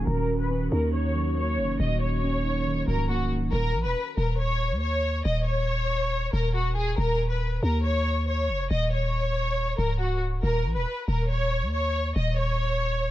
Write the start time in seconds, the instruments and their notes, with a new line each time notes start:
Already playing: ambient pad C#4
0.07 808-style bass D#1, ambient pad D#3 F#4, synth keys D#3, violin section A#4
0.40 violin section B4
0.51 synth keys C#4
0.72 808-style bass D#2, synth keys D#4, violin section A#4
0.94 synth keys D#3, violin section C#5
1.15 synth keys F#3
1.37 synth keys A#3, violin section C#5
1.58 808-style bass F1, synth keys A#3
1.80 808-style bass D#1, synth keys D#3, violin section D#5
2.01 violin section C#5
2.23 synth keys C#4
2.45 synth keys D#4
2.67 synth keys D#3
2.88 808-style bass C#1, synth keys F#3, violin section A#4
3.10 synth keys A#3, violin section F#4
3.31 synth keys A#3
3.53 808-style bass D#1, violin section A#4
3.74 808-style bass A#1
3.85 808-style bass D#1, violin section B4
4.17 808-style bass D#1, violin section A#4
4.39 violin section C#5
4.71 808-style bass D#2
4.82 violin section C#5
5.25 808-style bass D#1, violin section D#5
5.47 violin section C#5
6.33 808-style bass D#1, violin section A#4
6.55 violin section F#4
6.76 violin section G#4
6.98 808-style bass D#1, violin section A#4
7.31 violin section B4
7.63 808-style bass D#2, violin section A#4
7.85 violin section C#5
8.28 violin section C#5
8.49 808-style bass F1
8.71 808-style bass D#1, violin section D#5
8.92 violin section C#5
9.79 808-style bass C#1, violin section A#4
10.00 violin section F#4
10.43 808-style bass D#1, violin section A#4
10.65 808-style bass A#1
10.75 808-style bass D#1, violin section B4
11.08 808-style bass D#1, violin section A#4
11.30 violin section C#5
11.62 808-style bass D#2
11.73 violin section C#5
12.16 808-style bass D#1, violin section D#5
12.38 violin section C#5